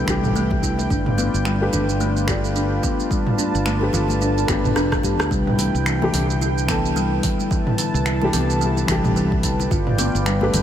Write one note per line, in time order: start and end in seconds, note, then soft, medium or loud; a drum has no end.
0.00 0.86 E4 medium
0.00 0.87 B4 medium
0.00 3.06 G5 medium
0.06 0.86 C2 medium
0.06 0.88 E3 medium
0.06 0.89 A3 medium
0.06 0.34 D4 medium
0.06 0.89 D4 medium
0.06 finger snap medium
0.06 kick medium
0.06 high conga soft
0.06 shaker medium
0.10 0.90 G4 loud
0.24 kick medium
0.24 mid tom medium
0.24 shaker soft
0.36 0.51 A3 loud
0.36 shaker soft
0.51 kick medium
0.51 high conga medium
0.63 0.78 E4 medium
0.63 kick medium
0.63 shaker medium
0.79 high bongo medium
0.79 shaker soft
0.90 1.28 G1 medium
0.90 1.06 D4 medium
0.90 5.27 F4 medium
0.90 5.27 B4 medium
0.90 5.27 D5 medium
0.90 kick loud
0.90 shaker soft
1.06 mid tom medium
1.17 1.44 B3 loud
1.17 high conga medium
1.17 shaker medium
1.34 1.69 G1 loud
1.34 shaker soft
1.45 1.55 G3 medium
1.45 finger snap medium
1.45 shaker soft
1.61 1.82 A3 medium
1.61 1.82 D4 medium
1.61 1.83 G4 medium
1.61 1.83 B4 loud
1.73 2.79 G1 medium
1.73 1.99 D4 medium
1.73 high bongo medium
1.73 low conga medium
1.73 shaker medium
1.89 high bongo soft
1.89 shaker soft
2.00 2.16 A3 medium
2.00 shaker soft
2.17 shaker soft
2.26 3.77 A3 medium
2.26 3.78 D4 medium
2.26 2.43 F4 medium
2.26 3.78 G4 medium
2.26 finger snap medium
2.26 kick loud
2.26 shaker medium
2.30 3.79 D5 medium
2.44 shaker soft
2.56 2.71 D4 medium
2.56 shaker soft
2.83 3.10 B3 loud
2.83 kick medium
2.83 low conga medium
2.83 shaker medium
2.99 high conga soft
2.99 shaker soft
3.10 3.20 G3 medium
3.10 5.28 A5 medium
3.10 kick loud
3.10 shaker soft
3.27 mid tom medium
3.38 3.65 D4 medium
3.38 high conga medium
3.38 shaker medium
3.55 3.89 G1 loud
3.55 shaker soft
3.66 3.81 A3 loud
3.66 finger snap medium
3.66 shaker soft
3.80 4.44 A3 medium
3.80 4.45 D4 medium
3.80 4.46 G4 medium
3.80 high bongo soft
3.84 4.46 B4 medium
3.93 4.44 G1 medium
3.93 4.09 F4 medium
3.93 high bongo medium
3.93 low conga medium
3.93 shaker medium
4.09 high bongo soft
4.09 high conga medium
4.09 shaker soft
4.21 4.36 D4 medium
4.21 high conga soft
4.21 shaker soft
4.38 high bongo medium
4.38 shaker soft
4.47 4.76 G1 medium
4.47 5.29 A3 medium
4.47 4.64 B3 medium
4.47 5.29 D4 medium
4.47 5.30 G4 medium
4.47 5.31 B4 loud
4.47 finger snap medium
4.47 kick loud
4.47 high conga medium
4.47 shaker medium
4.64 kick medium
4.64 mid tom medium
4.64 shaker soft
4.76 4.98 F1 medium
4.76 4.90 D4 loud
4.76 cross-stick medium
4.76 shaker soft
4.92 kick medium
4.92 cross-stick medium
4.92 high conga medium
4.92 low conga medium
4.92 shaker soft
5.03 5.20 G2 medium
5.03 5.19 G4 medium
5.03 kick medium
5.03 shaker medium
5.19 5.28 D2 medium
5.19 cross-stick medium
5.19 high bongo medium
5.19 shaker soft
5.31 5.68 C2 loud
5.31 5.46 G3 medium
5.31 9.68 E4 medium
5.31 10.62 B4 medium
5.31 7.49 G5 medium
5.31 kick loud
5.31 shaker soft
5.47 mid tom medium
5.58 5.74 E3 medium
5.58 open hi-hat loud
5.58 high conga medium
5.58 shaker medium
5.74 6.09 C2 loud
5.74 shaker soft
5.86 6.12 E3 medium
5.86 finger snap medium
5.86 shaker soft
6.02 6.23 E3 loud
6.02 6.23 A3 medium
6.02 6.24 D4 medium
6.02 6.24 G4 loud
6.02 high conga medium
6.13 7.19 C2 medium
6.13 6.23 D3 medium
6.13 open hi-hat medium
6.13 high bongo medium
6.13 low conga medium
6.13 shaker medium
6.29 high bongo soft
6.29 shaker soft
6.41 6.50 E4 medium
6.41 shaker soft
6.58 shaker soft
6.67 8.17 E3 medium
6.67 8.18 A3 medium
6.67 6.84 B3 loud
6.67 8.19 D4 medium
6.67 finger snap medium
6.67 kick loud
6.67 open hi-hat loud
6.67 shaker medium
6.71 8.19 A4 medium
6.86 shaker soft
6.96 7.11 G3 medium
6.96 shaker soft
7.23 7.39 E3 medium
7.23 kick loud
7.23 open hi-hat loud
7.23 low conga loud
7.23 shaker medium
7.40 high conga medium
7.40 shaker soft
7.51 7.77 E3 medium
7.51 9.69 A5 medium
7.51 kick loud
7.51 shaker soft
7.67 mid tom medium
7.78 7.88 D3 medium
7.78 open hi-hat medium
7.78 shaker medium
7.94 8.29 C2 loud
7.94 shaker soft
8.06 8.15 E4 medium
8.06 finger snap medium
8.06 shaker soft
8.20 8.85 E3 medium
8.20 8.86 A3 medium
8.20 8.86 D4 medium
8.20 high bongo soft
8.20 high conga medium
8.24 8.87 G4 medium
8.33 8.84 C2 medium
8.33 8.49 B3 loud
8.33 open hi-hat medium
8.33 high bongo medium
8.33 low conga medium
8.33 shaker medium
8.50 shaker soft
8.61 8.76 G3 medium
8.61 shaker soft
8.77 high bongo soft
8.77 shaker soft
8.87 9.67 C2 loud
8.87 9.69 E3 loud
8.87 9.04 E3 medium
8.87 9.70 A3 medium
8.87 9.70 D4 medium
8.87 finger snap medium
8.87 kick loud
8.87 open hi-hat medium
8.87 shaker medium
8.91 9.71 G4 loud
9.04 kick medium
9.04 mid tom medium
9.04 high conga medium
9.04 shaker soft
9.16 9.42 E3 medium
9.16 shaker soft
9.32 kick loud
9.43 9.53 D3 medium
9.43 kick medium
9.43 open hi-hat medium
9.43 shaker medium
9.60 high bongo medium
9.60 shaker soft
9.71 10.08 G1 medium
9.71 10.62 F4 medium
9.71 9.80 F4 medium
9.71 10.62 D5 medium
9.71 10.62 G5 medium
9.71 kick loud
9.71 shaker soft
9.87 mid tom medium
9.98 10.14 B3 loud
9.98 open hi-hat medium
9.98 high conga medium
9.98 shaker medium
10.15 10.49 G1 loud
10.15 shaker soft
10.26 10.41 G3 medium
10.26 finger snap medium
10.26 shaker soft
10.41 10.62 A3 loud
10.41 10.62 D4 medium
10.41 10.62 G4 medium
10.41 10.62 B4 loud
10.41 high conga medium
10.53 10.62 G1 medium
10.53 10.62 F3 medium
10.53 open hi-hat medium
10.53 high bongo medium
10.53 low conga loud
10.53 shaker medium